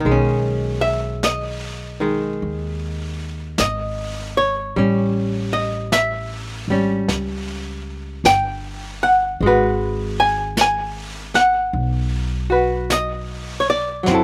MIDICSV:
0, 0, Header, 1, 4, 480
1, 0, Start_track
1, 0, Key_signature, 5, "major"
1, 0, Tempo, 1178782
1, 14, Time_signature, 4, 2, 24, 8
1, 1934, Tempo, 1165049
1, 5843, End_track
2, 0, Start_track
2, 0, Title_t, "Hollow-body jazz guitar"
2, 0, Program_c, 0, 26
2, 0, Note_on_c, 0, 75, 68
2, 2, Note_on_c, 0, 51, 40
2, 24, Note_on_c, 0, 56, 45
2, 46, Note_on_c, 0, 61, 47
2, 330, Note_off_c, 0, 75, 0
2, 331, Note_on_c, 0, 76, 74
2, 501, Note_off_c, 0, 76, 0
2, 505, Note_on_c, 0, 75, 69
2, 810, Note_off_c, 0, 51, 0
2, 815, Note_off_c, 0, 56, 0
2, 815, Note_on_c, 0, 51, 35
2, 820, Note_on_c, 0, 56, 33
2, 822, Note_off_c, 0, 61, 0
2, 825, Note_off_c, 0, 75, 0
2, 1465, Note_on_c, 0, 75, 69
2, 1779, Note_off_c, 0, 75, 0
2, 1781, Note_on_c, 0, 73, 73
2, 1935, Note_off_c, 0, 51, 0
2, 1937, Note_off_c, 0, 56, 0
2, 1940, Note_on_c, 0, 55, 44
2, 1948, Note_on_c, 0, 61, 48
2, 2254, Note_off_c, 0, 73, 0
2, 2255, Note_on_c, 0, 75, 75
2, 2418, Note_off_c, 0, 75, 0
2, 2419, Note_on_c, 0, 76, 77
2, 2734, Note_off_c, 0, 55, 0
2, 2739, Note_on_c, 0, 55, 35
2, 2740, Note_off_c, 0, 61, 0
2, 2741, Note_off_c, 0, 76, 0
2, 2745, Note_on_c, 0, 61, 36
2, 3380, Note_on_c, 0, 79, 87
2, 3676, Note_off_c, 0, 79, 0
2, 3698, Note_on_c, 0, 78, 79
2, 3858, Note_off_c, 0, 55, 0
2, 3860, Note_on_c, 0, 56, 42
2, 3861, Note_off_c, 0, 61, 0
2, 3875, Note_on_c, 0, 66, 50
2, 3878, Note_off_c, 0, 78, 0
2, 3880, Note_on_c, 0, 71, 50
2, 4177, Note_off_c, 0, 71, 0
2, 4179, Note_on_c, 0, 80, 85
2, 4329, Note_off_c, 0, 80, 0
2, 4348, Note_on_c, 0, 80, 78
2, 4640, Note_off_c, 0, 80, 0
2, 4654, Note_on_c, 0, 78, 78
2, 5122, Note_off_c, 0, 66, 0
2, 5127, Note_on_c, 0, 66, 35
2, 5136, Note_on_c, 0, 71, 33
2, 5145, Note_off_c, 0, 78, 0
2, 5300, Note_on_c, 0, 75, 78
2, 5579, Note_off_c, 0, 75, 0
2, 5581, Note_on_c, 0, 73, 59
2, 5613, Note_off_c, 0, 73, 0
2, 5621, Note_on_c, 0, 74, 75
2, 5757, Note_off_c, 0, 56, 0
2, 5759, Note_on_c, 0, 54, 39
2, 5772, Note_off_c, 0, 66, 0
2, 5776, Note_off_c, 0, 71, 0
2, 5777, Note_on_c, 0, 60, 42
2, 5791, Note_on_c, 0, 64, 36
2, 5802, Note_off_c, 0, 74, 0
2, 5804, Note_on_c, 0, 69, 42
2, 5843, Note_off_c, 0, 54, 0
2, 5843, Note_off_c, 0, 60, 0
2, 5843, Note_off_c, 0, 64, 0
2, 5843, Note_off_c, 0, 69, 0
2, 5843, End_track
3, 0, Start_track
3, 0, Title_t, "Upright bass"
3, 0, Program_c, 1, 32
3, 20, Note_on_c, 1, 35, 68
3, 963, Note_off_c, 1, 35, 0
3, 986, Note_on_c, 1, 39, 64
3, 1444, Note_off_c, 1, 39, 0
3, 1461, Note_on_c, 1, 32, 62
3, 1920, Note_off_c, 1, 32, 0
3, 1940, Note_on_c, 1, 33, 73
3, 2716, Note_off_c, 1, 33, 0
3, 2728, Note_on_c, 1, 32, 57
3, 2883, Note_off_c, 1, 32, 0
3, 2895, Note_on_c, 1, 37, 62
3, 3360, Note_off_c, 1, 37, 0
3, 3372, Note_on_c, 1, 31, 60
3, 3837, Note_off_c, 1, 31, 0
3, 3852, Note_on_c, 1, 32, 77
3, 4796, Note_off_c, 1, 32, 0
3, 4811, Note_on_c, 1, 35, 71
3, 5755, Note_off_c, 1, 35, 0
3, 5773, Note_on_c, 1, 30, 72
3, 5843, Note_off_c, 1, 30, 0
3, 5843, End_track
4, 0, Start_track
4, 0, Title_t, "Drums"
4, 20, Note_on_c, 9, 25, 30
4, 501, Note_off_c, 9, 25, 0
4, 501, Note_on_c, 9, 25, 32
4, 501, Note_on_c, 9, 38, 36
4, 501, Note_on_c, 9, 44, 38
4, 542, Note_off_c, 9, 38, 0
4, 542, Note_off_c, 9, 44, 0
4, 979, Note_off_c, 9, 25, 0
4, 979, Note_on_c, 9, 25, 33
4, 1458, Note_off_c, 9, 25, 0
4, 1458, Note_on_c, 9, 25, 26
4, 1458, Note_on_c, 9, 38, 38
4, 1458, Note_on_c, 9, 44, 42
4, 1499, Note_off_c, 9, 38, 0
4, 1499, Note_off_c, 9, 44, 0
4, 1937, Note_off_c, 9, 25, 0
4, 1937, Note_on_c, 9, 25, 30
4, 2417, Note_off_c, 9, 25, 0
4, 2417, Note_on_c, 9, 25, 27
4, 2417, Note_on_c, 9, 38, 38
4, 2417, Note_on_c, 9, 44, 41
4, 2458, Note_off_c, 9, 38, 0
4, 2458, Note_off_c, 9, 44, 0
4, 2896, Note_off_c, 9, 25, 0
4, 2896, Note_on_c, 9, 25, 34
4, 2896, Note_on_c, 9, 38, 25
4, 2937, Note_off_c, 9, 38, 0
4, 3376, Note_off_c, 9, 25, 0
4, 3376, Note_on_c, 9, 25, 32
4, 3376, Note_on_c, 9, 38, 37
4, 3376, Note_on_c, 9, 44, 45
4, 3417, Note_off_c, 9, 38, 0
4, 3417, Note_off_c, 9, 44, 0
4, 3853, Note_off_c, 9, 25, 0
4, 3853, Note_on_c, 9, 25, 28
4, 4332, Note_off_c, 9, 25, 0
4, 4332, Note_on_c, 9, 25, 31
4, 4332, Note_on_c, 9, 38, 37
4, 4332, Note_on_c, 9, 44, 43
4, 4373, Note_off_c, 9, 38, 0
4, 4373, Note_off_c, 9, 44, 0
4, 4651, Note_on_c, 9, 38, 26
4, 4692, Note_off_c, 9, 38, 0
4, 4813, Note_off_c, 9, 25, 0
4, 4813, Note_on_c, 9, 25, 31
4, 5293, Note_off_c, 9, 25, 0
4, 5293, Note_on_c, 9, 25, 29
4, 5293, Note_on_c, 9, 38, 40
4, 5293, Note_on_c, 9, 44, 41
4, 5334, Note_off_c, 9, 38, 0
4, 5334, Note_off_c, 9, 44, 0
4, 5771, Note_off_c, 9, 25, 0
4, 5771, Note_on_c, 9, 25, 30
4, 5771, Note_on_c, 9, 38, 22
4, 5812, Note_off_c, 9, 38, 0
4, 5843, Note_off_c, 9, 25, 0
4, 5843, End_track
0, 0, End_of_file